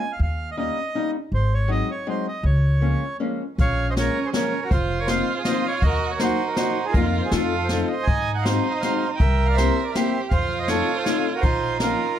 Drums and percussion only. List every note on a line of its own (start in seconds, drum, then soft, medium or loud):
3.59 kick medium
3.59 closed hi-hat soft
3.97 snare medium
3.97 closed hi-hat soft
4.34 snare medium
4.34 closed hi-hat medium
4.71 kick medium
4.71 closed hi-hat medium
5.08 snare medium
5.08 closed hi-hat soft
5.45 snare medium
5.45 closed hi-hat soft
5.82 kick medium
5.82 closed hi-hat soft
6.19 snare medium
6.19 closed hi-hat soft
6.56 snare medium
6.56 closed hi-hat soft
6.94 kick medium
6.94 closed hi-hat soft
7.31 snare medium
7.31 closed hi-hat soft
7.69 snare medium
7.69 closed hi-hat soft
8.07 kick medium
8.07 closed hi-hat soft
8.45 snare medium
8.45 closed hi-hat soft
8.83 snare medium
8.83 closed hi-hat soft
9.20 kick medium
9.20 closed hi-hat soft
9.58 snare medium
9.58 closed hi-hat soft
9.95 snare medium
9.95 closed hi-hat soft
10.31 kick medium
10.31 closed hi-hat soft
10.68 snare medium
10.68 closed hi-hat soft
11.06 snare medium
11.06 closed hi-hat soft
11.43 kick medium
11.43 closed hi-hat soft
11.80 snare medium
11.80 closed hi-hat soft